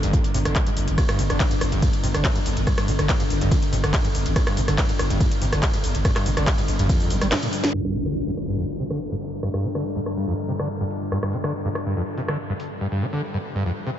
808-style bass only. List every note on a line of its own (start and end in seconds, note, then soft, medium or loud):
0.03 0.13 G1 medium
0.34 0.45 G1 loud
0.45 0.55 G1 medium
0.77 0.87 G1 loud
0.88 0.98 G1 medium
1.19 1.29 G1 loud
1.30 1.40 G1 medium
1.61 1.71 G1 loud
1.72 1.82 G1 medium
2.03 2.14 G1 loud
2.14 2.24 G1 medium
2.46 2.56 G1 loud
2.56 2.67 G1 medium
2.88 2.98 G1 loud
2.99 3.09 G1 medium
3.30 3.41 G1 loud
3.41 3.51 G1 medium
3.73 3.83 G1 loud
3.84 3.93 G1 medium
4.15 4.25 G1 loud
4.26 4.36 G1 medium
4.57 4.67 G1 loud
4.68 4.78 G1 medium
4.99 5.10 G1 loud
5.10 5.20 G1 medium
5.42 5.52 G1 loud
5.52 5.62 G1 medium
5.84 5.94 G1 loud
5.95 6.05 G1 medium
6.26 6.36 G1 loud
6.37 6.47 G1 medium
6.68 6.78 G1 loud
6.79 6.89 G1 medium
7.10 7.21 G1 loud
7.21 7.31 G1 medium